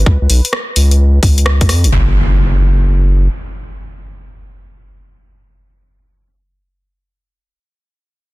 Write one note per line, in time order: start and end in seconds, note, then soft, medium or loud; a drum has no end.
0.00 1.94 B4 medium
0.06 0.18 C#2 loud
0.06 kick loud
0.21 0.27 C#2 loud
0.30 0.41 B1 loud
0.30 open hi-hat loud
0.45 closed hi-hat medium
0.53 cross-stick loud
0.76 1.19 C#2 medium
0.76 open hi-hat loud
0.91 closed hi-hat medium
1.23 1.61 C#2 medium
1.23 kick loud
1.23 open hi-hat loud
1.38 closed hi-hat medium
1.46 cross-stick loud
1.61 1.71 C#2 medium
1.61 kick loud
1.61 closed hi-hat soft
1.69 1.86 F2 loud
1.69 cross-stick medium
1.69 open hi-hat loud
1.84 1.90 G#1 loud
1.84 closed hi-hat medium
1.92 3.28 F#1 loud
1.92 impact medium